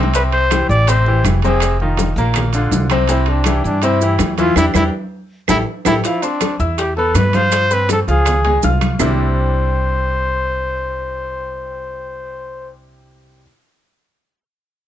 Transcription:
Already playing: C2 C3 C4 C5
0.03 low bongo
0.14 C3 C4 B4 C5, high bongo, high timbale, maracas
0.32 C5, high bongo, high conga, high timbale
0.51 E3 E4 G4, high bongo, high conga, high timbale, low timbale, claves, maracas
0.69 A1 D5, high conga, maracas
0.87 C3 C4 C5, high bongo, high conga, high timbale, maracas
1.06 E3 E4 G4, high bongo, high conga
1.24 F1, high bongo, low bongo, high conga, high timbale, low timbale, claves, maracas
1.42 C3 C4 G#4 C5, high bongo, high conga, high timbale, maracas
1.60 high bongo, high conga, high timbale, claves, maracas
1.80 D#3 D#4 F4, high bongo, high conga
1.97 high bongo, high conga, high timbale, low timbale, maracas
2.16 A#1 A#2 A#3 A#4, high conga, maracas
2.34 high bongo, high conga, low conga, high timbale, claves, maracas
2.53 D3 D4 F4, high bongo, high conga, high timbale, maracas
2.71 C2, high bongo, low bongo, high conga, low timbale, maracas
2.90 C3 C4 C5, high bongo, high conga, high timbale, claves, maracas
3.07 C3 C4 E4 C5, high bongo, high conga, high timbale, maracas
3.26 D4, high bongo, high conga, high timbale
3.44 E3 E4 G4, high bongo, high conga, high timbale, low timbale, claves, maracas
3.64 G2 D4, high conga, maracas
3.82 C3 C4 E4 C5, high bongo, high conga, high timbale, maracas
4.01 E3 E4 G4, high bongo, high conga, maracas
4.19 E2, high bongo, low bongo, high conga, high timbale, low timbale, claves, maracas
4.38 E3 E4 F4 E5, high bongo, high conga, high timbale, maracas
4.56 E2 D4 E4 G4, low bongo, high conga, high timbale, claves, maracas
4.74 E2 D4 E4 G4, low bongo, high conga, high timbale, claves, maracas
5.48 A1 E4 G4 A4, low bongo, high conga, high timbale, claves, maracas
5.85 A1 E4 G4 A4, low bongo, high conga, high timbale, claves, maracas
6.04 F3 E4 F4 F5, high bongo, high timbale, maracas
6.22 C4 D4 C5 C6, high bongo, high conga, high timbale, maracas
6.41 high bongo, high conga, high timbale, low timbale, claves, maracas
6.60 E2 E4 E5 E6, high conga, maracas
6.78 G4, high bongo, high conga, high timbale, maracas
6.96 B3 A4 B4 B5, high bongo, high conga
7.14 G2 B4, high bongo, low bongo, high conga, high timbale, low timbale, claves, maracas
7.33 F3 F4 C5 F5, high bongo, high conga, high timbale, maracas
7.52 high bongo, high conga, high timbale, claves, maracas
7.71 C4 B4 C5 C6, high bongo, high conga, maracas
7.89 A4, high bongo, high conga, high timbale, low timbale, maracas
8.08 C#2 F3 F4 G#4 F5, maracas
8.25 high bongo, high conga, low conga, high timbale, claves, maracas
8.44 G#3 G#4 G#5, high bongo, high conga, low conga, high timbale
8.63 C2 F4 F5 F6, high bongo, low bongo, high conga, low timbale, maracas
8.81 high bongo, high conga, high timbale, claves, maracas
8.99 C2 C3 G3 C4 D4 E4 C5, low bongo, low conga, low timbale, claves, maracas

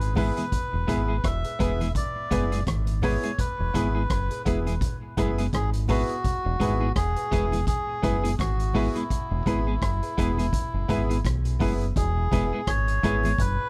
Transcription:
Already playing: G#1 B4
0.01 closed hi-hat
0.15 G#3 B3 E4 G#4 B4, kick, open hi-hat, high conga, low conga
0.37 G#3 B3 E4 G#4, closed hi-hat, high conga
0.52 kick, closed hi-hat, low conga
0.74 E1
0.87 G#1 G#3 B3 E4 G#4 B4, kick, closed hi-hat, low conga
1.08 G#3 B3 E4 G#4
1.24 E1 E5, kick, cross-stick, closed hi-hat
1.44 G#4 B4, closed hi-hat
1.59 E1 G#3 B3 E4 G#4 B4, kick, closed hi-hat
1.80 G#3 B3 E4 G#4, closed hi-hat, high conga
1.95 D5, kick, closed hi-hat, low conga
2.31 F#1 G#3 B3 E4 G#4 B4, kick, closed hi-hat, low conga
2.52 G#3 B3 E4 G#4, closed hi-hat
2.67 G#1, kick, cross-stick, closed hi-hat, high conga
2.87 closed hi-hat
3.02 G#3 B3 E4 G#4 B4 C#5, kick, open hi-hat, low conga
3.23 G#3 B3 E4 G#4, closed hi-hat
3.39 B4, kick, closed hi-hat, low conga
3.60 E1
3.74 G#1 G#3 B3 E4 G#4 B4, kick, closed hi-hat, low conga
3.95 G#3 B3 E4 G#4
4.10 F#1, kick, cross-stick, closed hi-hat
4.30 G#4 B4, closed hi-hat
4.45 E1 G#3 B3 E4 G#4 B4, kick, closed hi-hat
4.67 G#3 B3 E4 G#4, closed hi-hat, high conga
4.81 kick, closed hi-hat, low conga
5.17 F#1 G#3 B3 E4 G#4 B4, kick, closed hi-hat, low conga
5.38 G#3 B3 E4 G#4, closed hi-hat
5.53 G#1 G#4, kick, cross-stick, closed hi-hat, high conga
5.74 closed hi-hat
5.88 G#3 B3 E4 F#4 G#4 B4, kick, open hi-hat, low conga
6.09 closed hi-hat
6.24 kick, closed hi-hat, low conga
6.46 E1
6.60 G#1 G#3 B3 E4 G#4 B4, kick, closed hi-hat, low conga
6.81 G#3 B3 E4 G#4
6.96 E1 G#4, kick, cross-stick, closed hi-hat
7.16 G#4 B4, closed hi-hat
7.31 E1 G#3 B3 E4 G#4 B4, kick, closed hi-hat
7.52 G#3 B3 E4 G#4, closed hi-hat, high conga
7.67 G#4, kick, closed hi-hat, low conga
8.02 F#1 G#3 B3 E4 G#4 B4, kick, closed hi-hat, low conga
8.24 G#3 B3 E4 G#4, closed hi-hat
8.38 G#1 F#4, kick, cross-stick, closed hi-hat, high conga
8.60 closed hi-hat
8.73 G#3 B3 E4 G#4 B4, kick, open hi-hat, low conga
8.95 G#3 B3 E4 G#4, closed hi-hat
9.10 kick, closed hi-hat, low conga
9.31 E1
9.46 G#1 G#3 B3 E4 G#4 B4, kick, closed hi-hat, low conga
9.67 G#3 B3 E4 G#4
9.82 F#1, kick, cross-stick, closed hi-hat
10.03 G#4 B4, closed hi-hat
10.17 E1 G#3 B3 E4 G#4 B4, kick, closed hi-hat
10.38 G#3 B3 E4 G#4, closed hi-hat, high conga
10.53 kick, closed hi-hat, low conga
10.74 F#1
10.88 G#1 G#3 B3 E4 G#4 B4, kick, closed hi-hat, low conga
11.09 G#3 B3 E4 G#4, closed hi-hat
11.25 B1, kick, cross-stick, closed hi-hat, high conga
11.45 closed hi-hat
11.59 F#1 G#3 B3 E4 G#4 B4, kick, open hi-hat, low conga
11.81 closed hi-hat
11.96 E1 G#4, kick, closed hi-hat, low conga
12.31 E1 G#3 B3 E4 G#4 B4, kick, closed hi-hat, low conga
12.53 G#3 B3 E4 G#4
12.67 G#1 C#5, kick, cross-stick, closed hi-hat
12.88 closed hi-hat
13.03 G#1 G#3 B3 E4 G#4 B4, kick, closed hi-hat
13.24 G#3 B3 E4 G#4, closed hi-hat, high conga
13.38 F#1 B4, kick, closed hi-hat, low conga

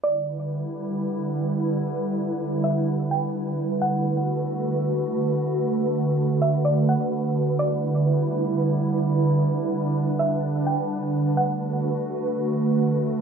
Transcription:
0.03 D3 G3 E4 B4 D5
2.64 E5
3.11 G5
3.82 A3 F#4 F#5
6.42 E5
6.65 D5
6.89 F#5
7.59 G3 E4 D5
9.49 D4
10.19 E5
10.66 G5
11.37 D3 A3 F#4 B4 F#5

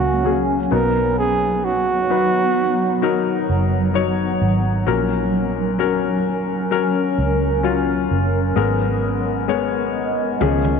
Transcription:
Already playing: C#2 F#3 A#3 C#4 F#4 A#4
0.24 F#3 C#4 G#4
0.71 B1 B2 F#3 B3 D#4 A#4
1.18 G#4
1.64 F#4
2.10 F#3 D#4 B4
3.02 F#3 D#4 A#4
3.49 F#1
3.94 F#3 D#4 C#5
4.41 G#1
4.87 A#1 A#2 F#3 C#4 A#4
5.79 F#3 C#4 A#4
6.71 F#3 C#4 A#4
7.18 C#2
7.63 F#3 C#4 F4
8.11 F#1
8.56 G#1 G#2 G#3 B3 A#4
9.48 G#3 B3 C#5
10.41 C#2 C#3 F3 C#4 G#4, high tom
10.65 high tom

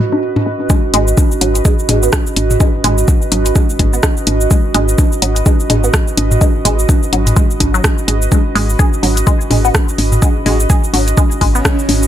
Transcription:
Already playing: F#4 B4 D#5
0.00 G#1
0.12 D#4, low bongo
0.36 mid tom, low bongo
0.46 G#1 G#4
0.60 low bongo
0.70 G#3, kick, low bongo, cabasa
0.94 G#1 G#3, closed hi-hat, low bongo
1.08 cabasa
1.17 kick, low bongo, cabasa
1.32 cabasa
1.41 G#1 F#3, closed hi-hat, low bongo
1.55 closed hi-hat, cabasa
1.65 G#3, kick, low bongo, cabasa
1.79 cabasa
1.89 G#1 G#3, closed hi-hat, mid tom, low bongo
2.03 B3, cabasa
2.13 kick, cross-stick, low bongo, cabasa
2.27 cabasa
2.36 G#1, closed hi-hat, low bongo
2.51 mid tom, cabasa
2.60 G#3, kick, low bongo, cabasa
2.84 G#1 G#3, closed hi-hat, mid tom, low bongo
2.98 cabasa
3.08 kick, low bongo, cabasa
3.22 cabasa
3.32 G#1 F#3, closed hi-hat, low bongo
3.46 closed hi-hat, cabasa
3.55 G#3, kick, low bongo, cabasa
3.70 cabasa
3.79 G#1 G#3, kick, closed hi-hat, low bongo
3.93 B3, cabasa
4.03 kick, cross-stick, low bongo, cabasa
4.17 cabasa
4.27 G#1, closed hi-hat, low bongo
4.41 cabasa
4.51 G#3, kick, low bongo, cabasa
4.74 G#1 G#3, closed hi-hat, low bongo
4.89 cabasa
4.98 kick, low bongo, cabasa
5.12 cabasa
5.22 G#1 F#3, closed hi-hat, low bongo
5.36 closed hi-hat, cabasa
5.46 G#3, kick, low bongo, cabasa
5.60 cabasa
5.70 G#1 G#3, closed hi-hat, mid tom, low bongo
5.84 B3, cabasa
5.94 kick, cross-stick, low bongo, cabasa
6.08 cabasa
6.17 G#1, closed hi-hat, low bongo
6.31 mid tom, cabasa
6.41 G#3, kick, low bongo, cabasa
6.65 G#1 G#3, closed hi-hat, mid tom, low bongo
6.79 cabasa
6.89 kick, low bongo, cabasa
7.03 cabasa
7.13 G#1 F#3, closed hi-hat, low bongo
7.27 closed hi-hat, mid tom, cabasa
7.36 G#3, kick, low bongo, cabasa
7.51 cabasa
7.60 G#1, kick, closed hi-hat, low bongo
7.74 F#3, cabasa
7.84 kick, cross-stick, low bongo, cabasa
7.98 cabasa
8.08 G#1 G#3, closed hi-hat, low bongo
8.22 cabasa
8.32 G#3, kick, low bongo, cabasa
8.55 G#1 G#3, open hi-hat, low bongo
8.70 cabasa
8.79 G#4, kick, low bongo, cabasa
8.93 cabasa
9.03 G#1 F#3, open hi-hat, low bongo
9.17 closed hi-hat, cabasa
9.27 G#3, kick, low bongo, cabasa
9.41 cabasa
9.51 G#1 G#3, mid tom, open hi-hat, low bongo
9.65 B3, cabasa
9.74 kick, cross-stick, low bongo, cabasa
9.89 cabasa
9.98 G#1, open hi-hat, low bongo
10.12 mid tom, cabasa
10.22 G#3, kick, low bongo, cabasa
10.46 G#1 G#3 F#4, mid tom, open hi-hat, low bongo
10.60 cabasa
10.70 G#4, kick, low bongo, cabasa
10.84 cabasa
10.93 G#1 F#3, open hi-hat, low bongo
11.08 closed hi-hat, cabasa
11.17 G#3, kick, low bongo, cabasa
11.31 cabasa
11.41 G#1 G#3, kick, open hi-hat, low bongo
11.55 B3 C#4, cabasa
11.65 kick, cross-stick, low bongo, cabasa
11.79 cabasa
11.89 G#1, open hi-hat, low bongo
12.03 cabasa

